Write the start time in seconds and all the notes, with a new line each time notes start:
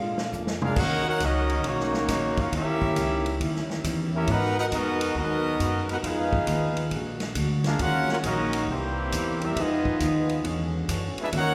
Already playing: A#2 D3 G#3 A#3 D4 F4 G#4 D5 F5
0.18 snare
0.32 F2 A#3 F4 G#4 D5, hi-hat pedal
0.47 snare
0.61 G#3 D4 F4 G#4 A#4 F5, mid tom
0.76 D#2 C#3 D#3 F#3 A#3 C#4 D#4 F#4 A#4 C#5 F#5, kick, crash
1.06 A#3 C#4 D#4 F#4 A#4 C#5 F#5
1.20 C#2 D#3 F#3 A#3 C#4 D#4 F#4 A#4 D#5, kick, hi-hat pedal, ride
1.49 ride
1.64 B1 D#3 F#3 A#3 C#4 D#4 F#4 C#5, kick, ride
1.68 F#4
1.80 snare
1.94 snare
2.08 A#1 D#3 A#3 C#4 F#4, kick, snare, hi-hat pedal, ride
2.37 C#4 F4 F#4 A#4 F5, kick, ride
2.52 D#2 D#3 G3 A#3 C#4 E4 A#4 E5, kick, ride
2.56 G4
2.82 kick
2.96 C#2 D#3 G3 C#4 E4, kick, hi-hat pedal, ride
3.26 ride
3.40 D#2 D#3 G3 C#4 E4, kick, ride
3.56 snare
3.70 snare
3.84 E2 D#3 G3 C#4 E4, kick, hi-hat pedal, ride
4.13 A#3 C#4 E4 G4 A#4 E5
4.27 G#2 B2 G#3 B3 D#4 F#4 A#4 B4 F#5, kick, ride
4.58 B3 D#4 F#4 A#4 B4 F#5
4.72 F2 G#3 B3 D#4 F#4 A#4 D#5, kick, hi-hat pedal, ride
5.01 ride
5.15 D#2 F#3 G#3 B3 D#4 F#4 A#4 D#5, kick
5.59 F#2 G#3 B3 F#4 A#4, kick, hi-hat pedal, ride
5.89 B3 D#4 F#4 A#4 B4 F#5, ride
6.03 F2 D#3 F3 G#3 B3 D#4 F4 G#4 B4 F5, kick, ride
6.33 kick
6.47 D#2 F3 B3 D#4 G#4, kick, hi-hat pedal, ride
6.77 ride
6.91 A#1 A#2 D3 G#3 A#3 D4 F#4, kick, ride
7.20 snare, ride
7.35 D2 A#2 G#3 D4 F#4, kick, hi-hat pedal, ride
7.64 G#3 D4 F4 G#4 A#4 F5, snare, ride
7.78 D#2 C#3 D#3 F#3 G#3 A#3 C#4 F4 F#4 A#4 F#5, kick, ride
7.83 F#4
8.09 A#3 C#4 F4 F#4 A#4 F#5, snare
8.23 A#1 D#3 F#3 G#3 A#3 C#4 D#4 F#4 A#4 D#5, kick, hi-hat pedal, ride
8.53 ride
8.67 C2 C3 E3 G3 A#3 C4 E4 G4 C5, kick
8.71 E4
9.12 E2 C3 G3 A#3 E4, kick, hi-hat pedal, ride
9.41 G3 A#3 C4 E4 G4 A#4 E5, ride
9.56 F2 D#3 F3 G#3 B3 D#4 F4 G#4, kick, ride
9.60 B3 F4 G#4 D#5
9.85 kick
10.00 D#2 F3 B3 D#4 G#4, kick, hi-hat pedal, ride
10.29 ride
10.43 E2 D3 E3 C#4 D4 F#4 G#4 C#5, kick, ride
10.88 F#2 E3 D4 G#4 C#5, kick, hi-hat pedal, ride
11.17 G#3 B3 E4, muted upright bass stroke, ride
11.22 D4 G#4 B4 E5
11.32 D#2 D#3 A#3 C#4 F#4 A#4, kick, ride
11.37 D#4 A#4 C#5 F#5